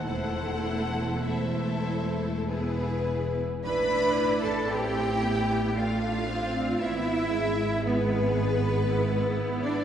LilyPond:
<<
  \new Staff \with { instrumentName = "Violin section" } { \time 3/4 \key a \minor \tempo 4 = 57 fis''4 e''4 r4 | b''8. a''16 g''4 f''4 | e''4 b'4.~ b'16 d''16 | }
  \new Staff \with { instrumentName = "Violin section" } { \time 3/4 \key a \minor <a' c''>4 <a' c''>4 <gis' b'>4 | b''8. a''16 g''4 f''4 | e''4 b'4.~ b'16 d''16 | }
  \new Staff \with { instrumentName = "Cello section" } { \time 3/4 \key a \minor e,2. | b'8. a'16 g'4 f'4 | e'4 b4.~ b16 d'16 | }
  \new Staff \with { instrumentName = "Viola section" } { \time 3/4 \key a \minor << { e'4 e'4 e'4 | e'4 e'4 d'4 | e'4 gis'4 e'4 | } \\ { a4 a4 b4 | d'4 c'8 b8 a8 c'8 | b8 gis4. gis8 b8 | } >> }
  \new Staff \with { instrumentName = "Double bass section" } { \clef bass \time 3/4 \key a \minor e,,2. | a,,2. | gis,,2. | }
>>